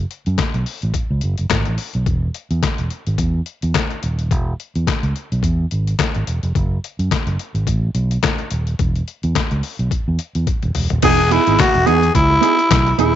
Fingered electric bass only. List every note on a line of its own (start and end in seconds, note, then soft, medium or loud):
0.27 0.36 F#2 medium
0.54 0.64 B1 medium
0.83 0.92 A1 medium
1.10 1.20 C#2 medium
1.24 1.35 F#1 medium
1.39 1.48 F#1 medium
1.50 1.62 G#1 medium
1.68 1.76 A1 medium
1.95 2.04 B1 medium
2.07 2.28 E1 loud
2.51 2.60 E2 medium
2.79 2.88 E1 medium
3.07 3.16 G#1 medium
3.18 3.40 E2 loud
3.63 3.72 E2 medium
4.04 4.31 D#1 medium
4.31 4.53 E1 medium
4.76 4.85 E2 medium
5.03 5.12 C#2 medium
5.32 5.41 B1 medium
5.43 5.65 E2 medium
5.72 5.93 G#1 medium
6.16 6.25 G#1 medium
6.27 6.39 E1 medium
6.43 6.52 F1 medium
6.56 6.77 F#1 medium
6.99 7.08 F#2 medium
7.27 7.36 F#1 medium
7.55 7.64 G#1 medium
7.67 7.89 A1 loud
7.95 8.17 B1 medium
8.51 8.73 D#1 medium
8.80 9.01 E1 medium
9.24 9.33 E2 medium
9.51 9.61 C#2 medium
9.79 9.89 B1 medium
10.08 10.17 E2 medium
10.35 10.45 E2 medium
10.63 10.73 D#1 medium
10.76 10.88 E1 medium
10.91 11.01 D#1 medium
11.04 11.37 E1 loud
11.47 11.57 G#1 loud
11.75 11.85 E1 medium
11.88 12.09 E2 loud
12.15 12.37 C#2 loud
12.71 12.92 B1 medium
12.98 13.15 D#1 medium